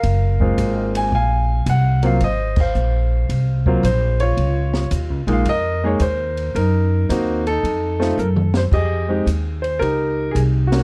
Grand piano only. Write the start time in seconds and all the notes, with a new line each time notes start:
Already playing: A#4 F5
0.40 G#3 A#3 C4 F4
0.97 G#5
1.15 F5 G#5
1.70 F#5
2.03 F#3 A#3 C4 F4 F5
2.24 C5 D#5
2.60 C5 F5
3.67 F#3 A#3 C4 F4
3.85 C5
4.20 F4 C#5
5.27 G#3 A#3 D#4 F4
5.33 F5
5.49 A#4 D#5
5.84 G#3 A#3 D#4 G#4 C#5
6.02 C5
6.55 D#4 A#4
7.09 A#3 C4 D#4 F#4
7.47 D#4 A4
8.00 A3 C4 D#4 F4
8.19 A#4
8.57 C5
8.73 G4 G#4 D#5
9.08 G#3 C4 D#4 G4
9.62 C5
9.79 D#4 G4 A#4
10.31 G#4
10.67 F#4
10.72 A#3 C#4